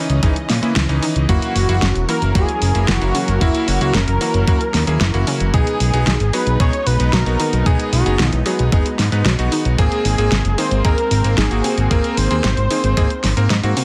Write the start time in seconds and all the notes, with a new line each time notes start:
Already playing: C#3 E3 C#4 D#4 D#5
0.10 C#2, closed hi-hat
0.23 G#1 E3 G#3 C#4 D#4, kick, closed hi-hat
0.36 closed hi-hat
0.49 A#2, snare, open hi-hat
0.63 A#2 E3 C#4 E4, closed hi-hat
0.76 C#2 E3, snare, closed hi-hat
0.89 C#2 E3 C#4 D#4, closed hi-hat
1.02 D#3, open hi-hat
1.16 C#2, closed hi-hat
1.29 F#1 A#2 F#3 A#3 C#4 E4 F#4 A#4, kick, closed hi-hat
1.42 closed hi-hat
1.56 F#1, open hi-hat
1.69 F#1 A#3 E4 F#4, closed hi-hat
1.82 F#1 C#3, snare, closed hi-hat
1.95 E1, closed hi-hat
2.09 E3 A#3 E4 F#4 A#4, open hi-hat
2.22 F#1, closed hi-hat
2.35 F#1 F#3 A#3 E4 F#4 G#4, kick, closed hi-hat
2.49 closed hi-hat
2.62 F#1, open hi-hat
2.75 F#1 A#3 E4 G#4, closed hi-hat
2.88 F#1 E3 F#4, snare, closed hi-hat
3.01 F#1 A#3 E4 F#4, closed hi-hat
3.15 C#3, open hi-hat
3.28 F#1, closed hi-hat
3.41 F#1 A#2 A#3 E4 F#4, kick, closed hi-hat
3.55 closed hi-hat
3.68 F#1 F#4, open hi-hat
3.81 C#2 A#3 E4 F#4, closed hi-hat
3.94 F#1 C#3 A#4, snare, closed hi-hat
4.08 F#1, closed hi-hat
4.21 E3 A#3 E4 F#4, open hi-hat
4.34 F#1, closed hi-hat
4.47 F#2 F#3 A#3 E4 F#4, kick, closed hi-hat
4.61 closed hi-hat
4.74 D#2, snare, open hi-hat
4.87 D#2 A#3 E4 G#4, closed hi-hat
5.01 F#1 E3, snare, closed hi-hat
5.14 F#1 A#3 E4 F#4, closed hi-hat
5.27 C#3, open hi-hat
5.40 F#1, closed hi-hat
5.54 B1 B2 G#3 B3 D#4 G#4, kick, closed hi-hat
5.67 closed hi-hat
5.80 B1, open hi-hat
5.93 B1 B3 D#4 G#4, closed hi-hat
6.07 B1 D#3, snare, closed hi-hat
6.20 G#1, closed hi-hat
6.33 F#3 B3 D#4 G#4 B4, open hi-hat
6.47 B1, closed hi-hat
6.60 B1 G#3 B3 D#4 G#4 C#5, kick, closed hi-hat
6.73 closed hi-hat
6.86 B1 B4, open hi-hat
7.00 B1 B3 D#4 B4, closed hi-hat
7.13 B1 F#3 A#4, snare, closed hi-hat
7.26 B1 B3 D#4 F#4, closed hi-hat
7.40 D#3, open hi-hat
7.53 B1, closed hi-hat
7.66 B1 B2 B3 D#4 G#4, kick, closed hi-hat
7.79 closed hi-hat
7.93 B1 F#4, open hi-hat
8.06 F#1 B3 D#4 G#4, closed hi-hat
8.19 B1 D#3, snare, closed hi-hat
8.33 B1, closed hi-hat
8.46 F#3 B3 D#4 G#4, open hi-hat
8.59 B1, closed hi-hat
8.72 F#1 G#3 B3 D#4 G#4, kick, closed hi-hat
8.86 closed hi-hat
8.99 G#2, snare, open hi-hat
9.12 G#2 B3 D#4 B4, closed hi-hat
9.25 B1 F#3, snare, closed hi-hat
9.39 B1 B3 D#4 F#4, closed hi-hat
9.52 D#3, open hi-hat
9.65 B1, closed hi-hat
9.78 G#1 A#2 A#3 C4 G#4, kick, closed hi-hat
9.92 closed hi-hat
10.05 G#1, open hi-hat
10.18 G#1 A#3 C4 G#4, closed hi-hat
10.32 G#1 C3, snare, closed hi-hat
10.45 F#1, closed hi-hat
10.58 D#3 A#3 C4 G#4 C5, open hi-hat
10.71 G#1, closed hi-hat
10.85 G#1 G#3 A#3 C4 G#4 A#4, kick, closed hi-hat
10.98 closed hi-hat
11.11 G#1, open hi-hat
11.24 G#1 A#3 C4 A#4, closed hi-hat
11.38 G#1 D#3 G#4, snare, closed hi-hat
11.51 G#1 A#3 C4 F#4, closed hi-hat
11.64 C3, open hi-hat
11.78 G#1, closed hi-hat
11.91 G#1 A#2 A#3 C4 G#4 A#4, kick, closed hi-hat
12.04 closed hi-hat
12.17 G#1 C5, open hi-hat
12.31 D#2 A#3 C4 G#4, closed hi-hat
12.44 G#1 C3, snare, closed hi-hat
12.57 G#1, closed hi-hat
12.71 D#3 A#3 C4 G#4, open hi-hat
12.84 G#1, closed hi-hat
12.97 G#1 G#3 A#3 C4 G#4, kick, closed hi-hat
13.10 closed hi-hat
13.24 G#1, snare, open hi-hat
13.37 G#1 A#3 C4 A#4, closed hi-hat
13.50 G#2 D#3, snare, closed hi-hat
13.63 G#2 A#3 C4 F#4, closed hi-hat
13.77 C3, open hi-hat